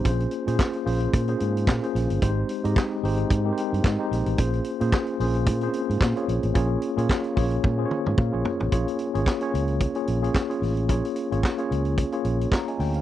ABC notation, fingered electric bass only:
X:1
M:4/4
L:1/16
Q:"Swing 16ths" 1/4=111
K:Bbdor
V:1 name="Fingered electric bass" clef=bass
B,,,2 z B,, z2 B,,,2 B,,2 A,,2 B,, z B,,, G,,, | A,,,2 z A,, z2 A,,,2 A,,2 z G,, A,, z B,,, =A,,, | B,,,2 z B,, z2 B,,,2 B,,2 z A,, B,, z B,,, =A,,, | B,,,2 z B,, z2 B,,,2 B,,2 z A,, B,, B,,, z =A,,, |
B,,, z2 A,,, z2 D,,3 z B,,,2 z2 =A,,,2 | B,,, z2 A,,, z2 D,,3 z B,,,2 z2 =D,,2 |]